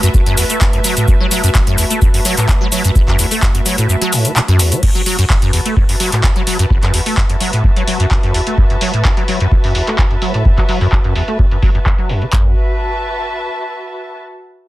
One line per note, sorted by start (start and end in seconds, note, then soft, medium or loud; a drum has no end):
0.00 0.09 F#2 loud
0.00 4.79 A3 medium
0.00 4.79 F#4 medium
0.00 4.82 F#4 medium
0.00 4.79 B4 medium
0.00 4.83 B4 medium
0.00 4.83 E5 medium
0.00 4.83 A5 medium
0.00 closed hi-hat medium
0.00 cabasa soft
0.14 0.21 F#1 loud
0.14 kick loud
0.14 cabasa soft
0.26 0.36 F#2 loud
0.26 closed hi-hat medium
0.37 0.44 E2 medium
0.37 open hi-hat loud
0.37 cabasa medium
0.50 0.59 A3 medium
0.50 closed hi-hat medium
0.50 cabasa soft
0.61 0.68 F#2 medium
0.61 kick loud
0.61 clap loud
0.61 cabasa soft
0.73 0.80 F#2 medium
0.73 closed hi-hat soft
0.84 0.95 F#3 loud
0.84 open hi-hat loud
0.84 cabasa medium
0.97 1.06 A2 medium
0.97 closed hi-hat medium
0.97 cabasa soft
1.08 1.15 F#2 medium
1.08 kick loud
1.08 cabasa soft
1.20 1.26 F#3 loud
1.31 1.42 F#3 loud
1.31 open hi-hat loud
1.31 cabasa medium
1.44 1.50 F#2 loud
1.44 closed hi-hat medium
1.44 cabasa soft
1.55 1.62 F#1 loud
1.55 kick loud
1.55 clap loud
1.55 cabasa soft
1.67 1.76 F#2 loud
1.67 closed hi-hat medium
1.78 1.85 E2 medium
1.78 open hi-hat loud
1.78 cabasa medium
1.90 2.00 A3 medium
1.90 closed hi-hat medium
1.90 cabasa soft
2.02 2.08 F#2 medium
2.02 kick loud
2.02 cabasa soft
2.14 2.20 F#2 medium
2.14 open hi-hat medium
2.25 2.35 F#3 loud
2.25 open hi-hat loud
2.25 cabasa medium
2.37 2.47 A2 medium
2.37 clap soft
2.37 closed hi-hat medium
2.37 cabasa soft
2.48 2.55 F#2 medium
2.48 kick loud
2.48 clap loud
2.48 cabasa soft
2.61 2.67 F#3 loud
2.72 2.82 F#3 loud
2.72 open hi-hat loud
2.72 cabasa medium
2.84 2.91 F#2 loud
2.84 closed hi-hat medium
2.84 cabasa soft
2.95 3.02 F#1 loud
2.95 kick loud
2.95 cabasa soft
3.08 3.17 F#2 loud
3.08 kick medium
3.08 clap soft
3.19 3.26 E2 medium
3.19 open hi-hat loud
3.19 cabasa medium
3.31 3.40 A3 medium
3.31 open hi-hat medium
3.31 cabasa soft
3.42 3.49 F#2 medium
3.42 kick loud
3.42 clap loud
3.42 cabasa soft
3.54 3.61 F#2 medium
3.54 closed hi-hat medium
3.66 3.76 F#3 loud
3.66 open hi-hat loud
3.66 cabasa medium
3.78 3.87 A2 medium
3.78 closed hi-hat medium
3.78 cabasa soft
3.89 3.96 F#2 medium
3.89 cabasa soft
4.01 4.14 F#3 loud
4.01 closed hi-hat medium
4.12 4.26 A2 medium
4.12 open hi-hat loud
4.12 cabasa medium
4.25 4.31 E3 medium
4.25 closed hi-hat medium
4.25 cabasa soft
4.36 4.40 B2 medium
4.36 clap loud
4.36 cabasa soft
4.48 4.61 F#2 loud
4.48 closed hi-hat soft
4.59 4.73 E2 medium
4.59 open hi-hat loud
4.59 cabasa medium
4.72 4.81 F#3 loud
4.72 closed hi-hat medium
4.72 cabasa soft
4.83 4.90 F#2 medium
4.83 12.32 F#4 medium
4.83 kick loud
4.83 crash loud
4.95 5.01 F#3 loud
4.95 closed hi-hat soft
5.06 5.16 F#3 loud
5.06 open hi-hat loud
5.19 5.25 F#2 loud
5.19 closed hi-hat medium
5.30 5.37 F#1 loud
5.30 kick loud
5.30 clap loud
5.39 5.51 F#2 loud
5.39 12.33 B4 medium
5.39 12.33 A5 medium
5.39 closed hi-hat medium
5.53 5.60 E2 medium
5.53 open hi-hat loud
5.66 5.75 A3 medium
5.66 closed hi-hat medium
5.77 5.83 F#2 medium
5.77 12.33 E5 medium
5.77 kick loud
5.89 5.95 F#2 medium
5.89 open hi-hat medium
6.00 6.10 F#3 loud
6.00 open hi-hat loud
6.12 6.22 A2 medium
6.12 clap soft
6.12 closed hi-hat medium
6.24 6.30 F#2 medium
6.24 kick loud
6.24 clap loud
6.36 6.42 F#3 loud
6.36 closed hi-hat soft
6.47 6.57 F#3 loud
6.47 open hi-hat loud
6.59 6.65 F#2 loud
6.59 closed hi-hat medium
6.70 6.77 F#1 loud
6.70 kick loud
6.83 6.92 F#2 loud
6.83 clap soft
6.83 closed hi-hat soft
6.94 7.01 E2 medium
6.94 open hi-hat loud
7.06 7.15 A3 medium
7.06 open hi-hat medium
7.17 7.24 F#2 medium
7.17 kick loud
7.17 clap loud
7.30 7.36 F#2 medium
7.30 closed hi-hat medium
7.40 7.51 F#3 loud
7.40 open hi-hat loud
7.53 7.62 A2 medium
7.53 closed hi-hat medium
7.64 7.71 F#2 medium
7.64 kick loud
7.76 7.83 F#3 loud
7.76 closed hi-hat medium
7.88 7.98 F#3 loud
7.88 open hi-hat loud
8.00 8.06 F#2 loud
8.00 closed hi-hat medium
8.11 8.18 F#1 loud
8.11 kick loud
8.11 clap loud
8.23 8.33 F#2 loud
8.23 closed hi-hat soft
8.34 8.41 E2 medium
8.34 open hi-hat loud
8.47 8.56 A3 medium
8.47 closed hi-hat medium
8.58 8.65 F#2 medium
8.58 kick loud
8.70 8.76 F#2 medium
8.70 closed hi-hat soft
8.81 8.92 F#3 loud
8.81 open hi-hat loud
8.94 9.03 A2 medium
8.94 closed hi-hat medium
9.05 9.12 F#2 medium
9.05 kick loud
9.05 clap loud
9.17 9.23 F#3 loud
9.17 closed hi-hat medium
9.28 9.38 F#3 loud
9.28 open hi-hat loud
9.40 9.47 F#2 loud
9.40 closed hi-hat medium
9.52 9.59 F#1 loud
9.52 kick loud
9.64 9.73 F#2 loud
9.64 open hi-hat medium
9.75 9.82 E2 medium
9.75 open hi-hat loud
9.87 9.97 A3 medium
9.87 clap soft
9.87 closed hi-hat medium
9.98 10.05 F#2 medium
9.98 kick loud
9.98 clap loud
10.11 10.17 F#2 medium
10.11 closed hi-hat soft
10.22 10.32 F#3 loud
10.22 open hi-hat loud
10.34 10.43 A2 medium
10.34 closed hi-hat medium
10.45 10.52 F#2 medium
10.45 kick loud
10.58 10.64 F#3 loud
10.58 kick medium
10.58 clap soft
10.58 closed hi-hat soft
10.69 10.79 F#3 loud
10.69 open hi-hat loud
10.81 10.87 F#2 loud
10.81 open hi-hat medium
10.92 10.99 F#1 loud
10.92 kick loud
10.92 clap loud
11.04 11.14 F#2 loud
11.04 closed hi-hat medium
11.15 11.22 E2 medium
11.15 open hi-hat loud
11.28 11.37 A3 medium
11.28 closed hi-hat medium
11.39 11.46 F#2 medium
11.39 kick loud
11.51 11.58 F#2 medium
11.51 closed hi-hat medium
11.62 11.69 F#3 loud
11.62 kick medium
11.62 open hi-hat loud
11.75 11.79 F#2 medium
11.75 closed hi-hat medium
11.86 11.93 F#2 medium
11.86 kick loud
11.86 clap loud
11.98 12.11 F#3 medium
11.98 closed hi-hat soft
12.09 12.23 F#2 loud
12.09 open hi-hat loud
12.22 12.25 E3 medium
12.22 closed hi-hat medium
12.33 12.55 F#2 medium
12.33 14.16 F#4 medium
12.33 kick loud
12.33 clap medium
12.40 14.16 B4 medium
12.48 14.16 E5 medium
12.54 14.16 A5 medium